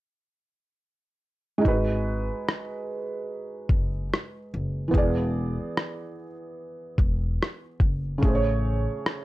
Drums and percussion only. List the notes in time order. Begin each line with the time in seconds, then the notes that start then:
1.65 kick
2.49 cross-stick
3.69 kick
4.14 cross-stick
4.94 kick
5.77 cross-stick
6.98 kick
7.43 cross-stick
7.80 kick
8.23 kick
9.06 cross-stick